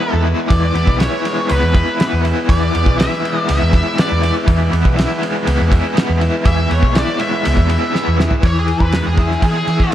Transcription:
0.00 0.50 E3 medium
0.00 1.25 G#3 medium
0.00 8.40 G#3 medium
0.00 8.40 B3 medium
0.00 0.74 B3 medium
0.00 0.25 E4 medium
0.00 8.40 E4 medium
0.00 0.22 B4 medium
0.00 0.47 B4 medium
0.13 0.32 E2 medium
0.25 0.99 E4 medium
0.49 0.70 E2 medium
0.49 2.48 E3 medium
0.49 8.41 B4 medium
0.49 0.99 D5 loud
0.49 kick loud
0.49 ride medium
0.74 0.84 E2 medium
0.74 1.50 B3 medium
0.74 ride medium
0.87 1.07 B1 medium
0.87 kick medium
0.99 1.75 E4 medium
0.99 1.51 C#5 medium
0.99 snare loud
0.99 ride medium
1.25 3.22 G#3 medium
1.25 ride medium
1.49 1.60 C#2 medium
1.49 2.00 B3 medium
1.49 2.20 B4 medium
1.49 ride medium
1.62 1.81 E2 medium
1.75 2.24 E4 medium
1.75 kick medium
1.75 ride medium
2.00 2.73 B3 medium
2.00 snare loud
2.00 ride medium
2.13 2.32 E2 medium
2.25 2.98 E4 medium
2.25 ride medium
2.49 2.69 E2 loud
2.49 4.46 E3 medium
2.49 2.99 D5 medium
2.49 kick loud
2.49 ride medium
2.73 2.84 E2 medium
2.73 3.47 B3 medium
2.73 ride medium
2.86 3.06 B1 medium
2.86 kick medium
2.98 3.73 E4 medium
2.98 3.48 E5 loud
2.98 snare loud
2.98 ride loud
3.13 snare soft
3.22 5.21 G#3 medium
3.22 ride medium
3.47 3.59 C#2 medium
3.47 3.98 B3 medium
3.47 3.99 E5 medium
3.47 ride loud
3.62 3.81 E2 medium
3.73 4.22 E4 medium
3.73 kick medium
3.73 ride medium
3.98 4.71 B3 medium
3.98 4.34 D5 medium
3.98 snare loud
3.98 ride medium
4.12 4.30 E2 medium
4.22 4.96 E4 medium
4.22 ride medium
4.46 4.67 E2 medium
4.46 6.44 E3 medium
4.46 kick loud
4.46 ride medium
4.71 4.82 E2 medium
4.71 5.46 B3 medium
4.71 ride medium
4.85 5.05 B1 medium
4.85 kick medium
4.97 5.71 E4 medium
4.97 snare loud
4.97 ride medium
5.22 7.19 G#3 medium
5.22 ride medium
5.47 5.57 C#2 loud
5.47 5.94 B3 medium
5.47 ride medium
5.61 5.79 E2 medium
5.71 6.20 E4 medium
5.71 kick medium
5.71 ride medium
5.95 6.68 B3 medium
5.95 snare loud
5.95 ride medium
6.09 6.28 E2 medium
6.21 6.93 E4 medium
6.21 ride medium
6.44 6.65 E2 loud
6.44 7.69 E3 medium
6.44 6.72 E5 loud
6.44 kick loud
6.44 ride medium
6.70 6.80 E2 medium
6.70 7.42 B3 medium
6.70 6.97 C#5 medium
6.70 ride medium
6.82 7.02 B1 medium
6.82 kick medium
6.94 7.67 E4 medium
6.94 7.20 D5 medium
6.94 snare loud
6.94 ride medium
7.19 8.44 G#3 medium
7.19 8.15 E5 medium
7.19 ride medium
7.43 7.56 C#2 medium
7.43 7.92 B3 medium
7.43 ride medium
7.57 7.76 E2 medium
7.57 kick medium
7.68 8.18 E4 medium
7.68 ride medium
7.93 8.43 B3 medium
7.93 snare medium
8.08 8.26 E2 medium
8.19 8.44 E4 medium
8.19 snare medium
8.31 floor tom medium
8.43 8.72 E2 medium
8.43 9.95 E3 medium
8.43 8.57 C#5 medium
8.43 kick loud
8.43 ride medium
8.59 8.81 G#4 medium
8.68 ride medium
8.80 9.00 E2 medium
8.80 9.05 B4 medium
8.80 kick medium
8.92 9.95 G#3 medium
8.92 snare loud
8.92 ride medium
9.07 9.35 E2 medium
9.07 9.42 G#4 medium
9.17 9.68 E4 medium
9.17 kick medium
9.17 ride medium
9.31 snare soft
9.42 9.62 E3 medium
9.42 9.95 G#4 medium
9.42 9.91 G#4 medium
9.42 kick medium
9.42 ride medium
9.67 9.87 E3 medium
9.67 9.95 E4 medium
9.67 ride medium
9.80 kick medium

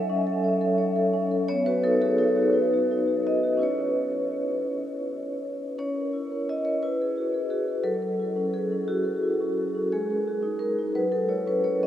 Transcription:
0.00 1.44 F#3 medium
0.00 0.27 A4 medium
0.00 0.44 C#5 medium
0.00 0.44 E5 loud
0.09 0.37 C#4 medium
0.27 0.54 A4 medium
0.44 0.72 C#5 medium
0.61 0.89 A4 medium
0.78 1.06 C#5 medium
0.96 1.24 A4 medium
1.13 1.42 C#4 medium
1.31 1.49 A4 medium
1.48 3.58 B3 medium
1.48 1.66 C#5 loud
1.66 1.94 F#4 medium
1.66 1.84 B4 medium
1.84 2.12 D#4 medium
1.84 2.01 A4 medium
2.01 2.29 F#4 medium
2.01 2.19 G#4 medium
2.18 2.47 D#4 medium
2.18 2.54 A4 medium
2.36 2.65 F#4 medium
2.53 2.82 D#4 soft
2.53 3.25 B4 medium
2.74 3.02 F#4 soft
2.91 3.19 D#4 soft
3.07 3.36 F#4 soft
3.27 3.55 D#4 soft
3.27 3.62 D#5 medium
3.43 3.62 F#4 soft
3.57 5.73 C#4 medium
3.57 5.74 E4 soft
3.61 5.75 B4 soft
3.61 4.72 C#5 medium
5.78 6.79 C#4 medium
5.78 6.48 C#5 medium
5.96 6.24 A#4 soft
6.13 6.41 E4 soft
6.32 6.59 A#4 soft
6.49 6.76 E4 soft
6.49 6.66 D#5 medium
6.65 6.83 A#4 soft
6.65 6.82 C#5 medium
6.83 7.83 E4 medium
6.83 7.52 B4 medium
7.02 7.28 G#4 soft
7.18 7.45 F#4 soft
7.34 7.49 G#4 soft
7.50 7.79 F#4 soft
7.50 7.67 G#4 medium
7.68 7.86 G#4 soft
7.84 9.89 F#3 medium
7.84 8.01 A4 medium
8.02 8.31 A4 soft
8.19 8.48 E4 soft
8.36 8.65 C#4 soft
8.53 8.89 G#4 medium
8.53 8.82 A4 soft
8.72 9.00 C#4 soft
8.88 9.17 E4 soft
8.88 9.93 F#4 medium
9.04 9.34 A4 soft
9.23 9.52 E4 soft
9.40 9.69 C#4 soft
9.57 9.86 A4 soft
9.75 9.93 C#4 soft
9.92 10.94 G#3 medium
9.92 10.62 G#4 medium
10.10 10.39 A#4 soft
10.28 10.56 F#4 soft
10.43 10.72 D#4 soft
10.59 10.96 A#4 medium
10.79 10.97 D#4 soft
10.95 11.87 F#3 medium
10.95 11.14 B4 medium
11.12 11.31 A4 medium
11.29 11.59 E4 soft
11.29 11.48 C#5 medium
11.47 11.76 C#4 soft
11.47 11.66 B4 medium
11.64 11.87 A4 soft
11.64 11.83 C#5 medium
11.83 11.87 C#4 soft
11.83 11.87 D#5 medium

